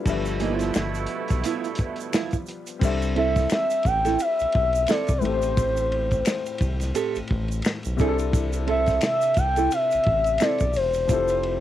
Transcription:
0.04 analog synth bass G1, horn section B2 A3 E4, upright piano F3 G3 D4 A4, string machine G3, kick, crash, shaker
0.08 string machine F3 B3, upright piano B4 E5
0.25 closed hi-hat, shaker
0.40 nylon-string guitar E3 A#3 D#4, closed hi-hat, shaker
0.54 nylon-string guitar F3 B3 E4
0.59 snare, closed hi-hat, shaker
0.74 analog synth bass G1, finger snap, snare, shaker
0.94 closed hi-hat, shaker
1.06 closed hi-hat
1.28 analog synth bass B1, kick, snare, closed hi-hat, shaker
1.44 nylon-string guitar F3 B3 E4, closed hi-hat, shaker
1.64 closed hi-hat, shaker
1.75 kick, closed hi-hat, shaker
1.96 closed hi-hat
2.00 shaker
2.13 nylon-string guitar F3 B3 E4, finger snap, snare, shaker
2.31 kick, closed hi-hat, shaker
2.46 closed hi-hat, shaker
2.67 closed hi-hat, shaker
2.79 analog synth bass C2, upright piano G3 C4 D4, kick, crash, shaker
2.83 upright piano A4 E5
3.02 ride, shaker
3.15 nylon-string guitar C4 E4 A4, soft synth lead E5, ride
3.36 kick, snare, ride, shaker
3.50 soft synth lead E5, finger snap, snare, ride, shaker
3.70 ride, shaker
3.83 analog synth bass A1, soft synth lead G5, kick, ride, shaker
4.05 nylon-string guitar C4 E4 A4, snare, ride, shaker
4.19 soft synth lead E5, ride, shaker
4.39 analog synth bass B1, ride, shaker
4.52 analog synth bass B1, kick, ride
4.73 ride, shaker
4.86 nylon-string guitar C4 E4 A4, soft synth lead D5, finger snap, ride, shaker
4.91 snare
5.07 analog synth bass C2, kick, ride, shaker
5.18 upright piano A2, soft synth lead B4, shaker
5.22 analog synth bass A1, upright piano A3 C4 G4, soft synth lead C5, ride
5.26 upright piano A4
5.33 upright piano C5
5.42 ride, shaker
5.57 kick, ride, shaker
5.77 ride, shaker
5.92 ride
6.11 kick, ride, shaker
6.25 finger snap, snare, ride, shaker
6.46 ride, shaker
6.58 analog synth bass C2, kick, ride, shaker
6.80 snare, ride, shaker
6.94 nylon-string guitar C4 G4 A4, ride, shaker
7.15 analog synth bass A1, ride, shaker
7.27 analog synth bass A1, kick, ride
7.48 ride, shaker
7.62 finger snap, ride, shaker
7.66 snare
7.83 analog synth bass B1, ride, shaker
7.97 analog synth bass C2, upright piano C3 C4 D4 E4, nylon-string guitar C4 E4 A4, kick, shaker
8.01 upright piano G#4, ride
8.08 upright piano A4
8.19 ride, shaker
8.33 kick, ride, shaker
8.53 ride, shaker
8.67 nylon-string guitar C4 E4 A4, soft synth lead E5, ride
8.86 kick, snare, ride, shaker
9.01 finger snap, snare, ride, shaker
9.05 soft synth lead E5
9.21 ride, shaker
9.34 analog synth bass C2, soft synth lead G5, kick, ride, shaker
9.56 nylon-string guitar C4 E4 A4, ride, shaker
9.71 soft synth lead E5, ride, shaker
9.91 analog synth bass A1, ride, shaker
10.03 kick, ride
10.08 analog synth bass A1
10.24 ride, shaker
10.38 nylon-string guitar C4 E4, finger snap, ride, shaker
10.42 nylon-string guitar A4, soft synth lead D5, snare
10.58 analog synth bass B1, kick, ride, shaker
10.73 analog synth bass E1, soft synth lead C5, open hi-hat, ride, shaker
10.94 ride, shaker
11.07 analog synth bass F1, upright piano F3 C4 E4 G4, kick, hi-hat pedal, ride, shaker
11.13 upright piano A4
11.28 ride, shaker
11.43 ride

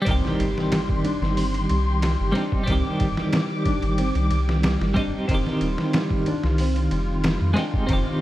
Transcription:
0.02 clean electric guitar G3 C4
0.06 sub bass C2, clean electric guitar D#3, nylon-string guitar C4, string section G4 C6, kick, ride, impact
0.11 clean electric guitar G4
0.25 snare
0.39 sub bass G1, nylon-string guitar G3, ride
0.58 snare
0.72 nylon-string guitar G3, snare, ride
0.89 kick
1.04 nylon-string guitar D4, ride
1.21 sub bass G1, snare
1.37 nylon-string guitar C4, open hi-hat
1.54 ride
1.69 sub bass C2, nylon-string guitar G3, ride
2.02 nylon-string guitar G3, snare, ride
2.20 sub bass G1
2.32 clean electric guitar G3 C4 D#4, nylon-string guitar D4, snare, ride
2.38 clean electric guitar G4
2.52 kick
2.63 clean electric guitar G3 C4, ride
2.68 sub bass C2, clean electric guitar D#3, nylon-string guitar C4, string section D6, kick
2.72 clean electric guitar G4
3.00 sub bass G1, nylon-string guitar G3, kick, ride
3.17 snare
3.33 nylon-string guitar G3, snare, ride
3.65 nylon-string guitar D4, kick, ride
3.82 sub bass G1, ride
3.98 nylon-string guitar C4, ride
4.15 sub bass C2, ride
4.31 sub bass C2, nylon-string guitar G3, ride
4.49 snare
4.63 nylon-string guitar G3, snare, ride
4.81 sub bass G1, snare
4.94 sub bass G1, clean electric guitar G3 C4 D#4, nylon-string guitar D4, kick, ride
4.99 clean electric guitar G4
5.28 sub bass F1, clean electric guitar D#3 C4, nylon-string guitar C4, string section F4, kick, ride
5.34 clean electric guitar G4
5.46 snare
5.61 sub bass D#1, nylon-string guitar G3, ride
5.78 snare
5.93 nylon-string guitar G3, snare, ride
6.11 kick
6.26 nylon-string guitar D4, ride
6.44 sub bass C2, snare
6.58 nylon-string guitar C4, open hi-hat
6.76 ride
6.91 sub bass F1, nylon-string guitar G3, ride
7.24 nylon-string guitar G3, snare, ride
7.41 sub bass F2
7.54 clean electric guitar G#3 C4 D#4, nylon-string guitar D4, snare, ride
7.58 clean electric guitar G4
7.74 kick
7.87 sub bass F1, clean electric guitar D#3 C4, nylon-string guitar C4, string section F5, kick, ride
7.93 clean electric guitar G4

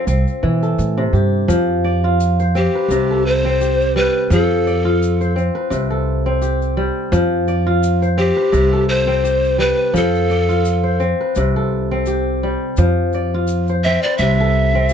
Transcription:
Already playing: kora F3 F4 A4 C5
0.07 upright bass C2, kora C4, shaker
0.28 shaker
0.43 upright bass B2, kora E3
0.63 kora A4, shaker
0.78 upright bass A2, shaker
0.97 kora C3
1.13 upright bass G2, kora G4, shaker
1.48 upright bass F2, kora F3, shaker
1.84 kora D5
2.04 kora F4
2.20 shaker
2.39 kora C5, shaker
2.55 kora C4, pan flute G4, shaker
2.75 kora B4
2.88 upright bass C2, kora C3, shaker
3.11 kora A4
3.26 pan flute C5
3.45 kora C4
3.61 kora G4, shaker
3.81 shaker
3.96 kora G3, pan flute B4
4.30 upright bass F2, kora F3, pan flute A4, shaker
4.67 kora D5, shaker
4.85 kora F4
5.02 shaker
5.21 kora C5, shaker
5.36 kora C4, shaker
5.55 kora B4
5.70 upright bass C2, kora C3, shaker
5.90 kora A4
6.26 kora C4
6.42 kora G4, shaker
6.62 shaker
6.77 kora G3
7.12 upright bass F2, kora F3, shaker
7.48 kora D5, shaker
7.67 kora F4
7.83 shaker
8.02 kora C5, shaker
8.18 kora C4, pan flute G4, shaker
8.37 kora B4
8.52 upright bass C2, kora C3, shaker
8.73 kora A4
8.89 pan flute C5
9.07 kora C4
9.24 kora G4, shaker
9.44 shaker
9.58 kora G3, pan flute B4
9.94 upright bass F2, kora F3, pan flute A4, shaker
10.15 shaker
10.30 kora D5, shaker
10.49 kora F4, shaker
10.65 shaker
10.84 kora C5
11.00 kora C4, shaker
11.21 kora B4
11.35 upright bass C2, kora C3, shaker
11.56 kora A4
11.91 kora C4
12.06 kora G4, shaker
12.43 kora G3
12.77 upright bass F2, kora F3, shaker
13.13 kora D5, shaker
13.34 kora F4
13.47 shaker
13.68 kora C5, shaker
13.84 kora C4, pan flute E5, shaker
14.03 kora B4, pan flute D5
14.18 upright bass C2, kora C3, pan flute E5, shaker
14.40 kora A4
14.75 kora C4
14.89 shaker

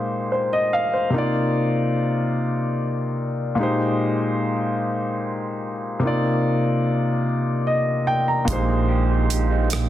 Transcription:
Already playing: grand piano A#2 G#3 D#4 G4 C5
0.32 grand piano C5
0.53 grand piano D#5
0.73 grand piano F5
0.94 grand piano C5
1.10 grand piano C3 A#3 D#4
1.16 grand piano F4 D5
3.55 grand piano A#2 G#3 D#4
3.61 grand piano G4 C5
5.99 grand piano C3 A#3 D#4
6.05 grand piano F4 D5
7.67 grand piano D#5
8.07 grand piano G5
8.28 grand piano A#5
8.45 analog synth bass A#1, grand piano A#2 G#3 D#4, clean electric guitar A#2, kick, closed hi-hat
8.51 grand piano G4 C5
8.68 clean electric guitar G#3
8.88 clean electric guitar G4
9.09 clean electric guitar D#4
9.30 clean electric guitar G4, closed hi-hat
9.50 clean electric guitar D#4
9.70 clean electric guitar A#2, cross-stick, closed hi-hat

